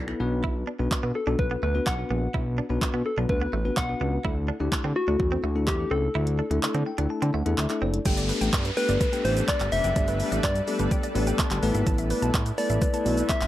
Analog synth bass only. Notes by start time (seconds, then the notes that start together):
Already playing: B1
0.20 B1
0.79 B1
1.03 B2
1.27 B1
1.63 D2
1.87 B1
2.10 A#1
2.34 B1
2.70 B1
2.94 B2
3.17 B1
3.29 D2
3.53 A1
3.77 B1
4.01 C#2
4.25 D2
4.60 D2
4.84 D3
5.08 D2
5.20 E2
5.44 D2
5.67 E2
5.91 C#2
6.15 D2
6.51 D2
6.63 D3
6.75 D3
6.98 D2
7.22 D3
7.34 D2
7.46 E2
7.58 D2
7.82 F#1
8.06 G1
8.41 A1
8.53 G2
8.89 G1
9.25 A1
9.60 G1
9.72 F1
9.84 F#1
9.96 G1
10.32 A1
10.44 G2
10.79 G1
11.15 A1
11.51 G1
11.63 A1
11.75 G#1
11.87 A1
12.22 B1
12.34 A2
12.70 A1
13.06 B1
13.41 A1